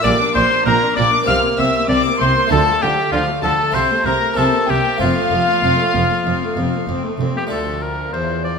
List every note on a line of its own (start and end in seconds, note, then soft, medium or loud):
0.02 0.12 A#1 medium
0.02 0.13 A#2 medium
0.02 1.21 A#3 medium
0.02 0.19 A#3 medium
0.02 1.23 D4 medium
0.02 1.24 G4 medium
0.02 0.18 D5 loud
0.02 0.35 D6 loud
0.02 0.36 D6 loud
0.06 0.33 A#2 medium
0.20 0.35 D4 medium
0.35 0.43 A#1 medium
0.35 0.43 A#2 medium
0.35 0.63 A#2 medium
0.35 0.51 A#3 medium
0.35 0.65 C5 loud
0.35 0.65 C6 loud
0.35 0.66 C6 loud
0.51 0.66 D4 medium
0.65 0.74 A#1 medium
0.65 0.94 A#2 medium
0.65 0.74 A#2 medium
0.65 0.80 A#3 medium
0.65 0.96 A#4 loud
0.65 0.96 A#5 loud
0.82 0.97 D4 medium
0.96 1.05 A#1 medium
0.96 1.05 A#2 medium
0.96 1.25 A#2 medium
0.96 1.12 A#3 medium
0.96 1.10 D5 loud
0.96 1.27 D6 loud
0.96 1.28 D6 medium
1.13 1.28 D4 medium
1.23 2.45 A#3 medium
1.23 2.45 C4 medium
1.23 2.46 G4 medium
1.27 1.36 C2 medium
1.27 1.35 C3 medium
1.27 1.55 C3 medium
1.27 1.42 C4 medium
1.27 1.42 F5 loud
1.27 1.58 F6 loud
1.27 1.36 F6 loud
1.43 1.58 A#3 medium
1.57 1.66 C2 medium
1.57 1.85 C3 medium
1.57 1.66 C3 medium
1.57 1.74 C4 medium
1.57 1.89 E5 medium
1.57 1.90 E6 loud
1.57 1.89 E6 medium
1.75 1.90 A#3 medium
1.89 1.97 C2 medium
1.89 1.97 C3 medium
1.89 2.17 C3 medium
1.89 2.04 C4 medium
1.89 2.03 D5 loud
1.89 2.20 D6 loud
2.05 2.20 A#3 medium
2.19 2.28 C2 medium
2.19 2.27 C3 medium
2.19 2.48 C3 medium
2.19 2.36 C4 medium
2.19 2.51 C5 medium
2.19 2.50 C6 loud
2.19 2.51 C6 medium
2.36 2.51 A#3 medium
2.47 2.59 D2 loud
2.47 2.58 D3 medium
2.47 3.68 A3 medium
2.47 3.70 F4 medium
2.47 2.81 A5 loud
2.51 2.79 D3 medium
2.51 2.66 F3 medium
2.51 2.83 A4 loud
2.51 2.59 A5 medium
2.67 2.82 A3 medium
2.81 2.89 D2 medium
2.81 2.90 D3 medium
2.81 3.10 D3 medium
2.81 2.97 F3 medium
2.81 3.12 G4 medium
2.81 3.12 G5 loud
2.81 2.91 G5 medium
2.97 3.12 A3 medium
3.11 3.19 D2 medium
3.11 3.21 D3 medium
3.11 3.40 D3 medium
3.11 3.27 F3 medium
3.11 3.26 F4 medium
3.11 3.43 F5 loud
3.11 3.21 F5 medium
3.28 3.44 A3 medium
3.42 3.50 D2 medium
3.42 3.51 D3 medium
3.42 3.71 D3 medium
3.42 3.59 F3 medium
3.42 3.76 A4 loud
3.42 3.50 A5 loud
3.42 3.74 A5 medium
3.59 3.74 A3 medium
3.71 3.81 C2 medium
3.71 3.82 C3 medium
3.71 4.33 A3 medium
3.71 4.34 C4 medium
3.71 3.89 C4 medium
3.71 4.35 F4 medium
3.71 4.07 C5 medium
3.71 3.81 C6 loud
3.71 4.05 C6 loud
3.75 4.03 C3 medium
3.90 4.06 A3 medium
4.04 4.12 C2 medium
4.04 4.13 C3 medium
4.04 4.34 C3 medium
4.04 4.21 C4 medium
4.04 4.39 A#4 loud
4.04 4.36 A#5 medium
4.04 4.36 A#5 loud
4.22 4.37 A3 medium
4.34 4.44 C2 medium
4.34 4.45 C3 medium
4.34 4.96 A#3 medium
4.34 4.97 C4 medium
4.34 4.51 C4 medium
4.34 4.98 E4 medium
4.34 4.44 A5 loud
4.34 4.67 A5 medium
4.38 4.66 C3 medium
4.38 4.71 A4 loud
4.53 4.68 A#3 medium
4.66 4.76 C2 medium
4.66 4.77 C3 medium
4.66 4.97 C3 medium
4.66 4.84 C4 medium
4.66 5.00 G4 medium
4.66 4.98 G5 medium
4.66 5.00 G5 medium
4.84 5.00 A#3 medium
4.97 5.07 F1 medium
4.97 5.09 F2 medium
4.97 7.46 A3 medium
4.97 7.47 C4 medium
4.97 5.15 C4 medium
4.97 7.48 F4 medium
4.97 6.85 F4 loud
4.97 6.88 F5 loud
4.97 6.85 F5 medium
5.02 5.29 F2 medium
5.16 5.32 A3 medium
5.31 5.39 F1 medium
5.31 5.40 F2 medium
5.31 5.60 F2 medium
5.31 5.47 C4 medium
5.47 5.63 A3 medium
5.63 5.71 F1 medium
5.63 5.72 F2 medium
5.63 5.92 F2 medium
5.63 5.78 C4 medium
5.79 5.95 A3 medium
5.95 6.03 F1 medium
5.95 6.03 F2 medium
5.95 6.23 F2 medium
5.95 6.10 C4 medium
6.10 6.26 A3 medium
6.26 6.34 F1 medium
6.26 6.34 F2 medium
6.26 6.55 F2 medium
6.26 6.41 C4 medium
6.42 6.57 A3 medium
6.56 6.65 F1 medium
6.56 6.64 F2 medium
6.56 6.85 F2 medium
6.56 6.73 C4 medium
6.74 6.89 A3 medium
6.88 6.96 F1 medium
6.88 6.96 F2 medium
6.88 7.17 F2 medium
6.88 7.04 C4 medium
7.06 7.21 A3 medium
7.20 7.28 F1 medium
7.20 7.28 F2 medium
7.20 7.49 F2 medium
7.20 7.36 C4 medium
7.36 7.52 A3 medium
7.36 7.51 A#3 medium
7.36 7.50 G4 medium
7.36 7.44 G4 medium
7.47 8.09 D2 soft
7.47 8.09 A3 soft
7.47 8.59 D4 soft
7.47 8.59 F4 soft
7.51 8.10 D2 soft
7.51 8.59 F3 soft
7.51 7.82 D4 soft
7.51 7.84 A4 medium
7.51 7.82 A4 soft
7.83 8.13 D4 soft
7.83 8.13 A#4 soft
7.83 8.12 A#4 medium
8.13 8.59 E2 soft
8.13 8.44 E4 medium
8.13 8.44 C5 medium
8.13 8.45 C5 medium
8.44 8.59 F4 medium
8.44 8.59 D5 medium
8.44 8.59 D5 soft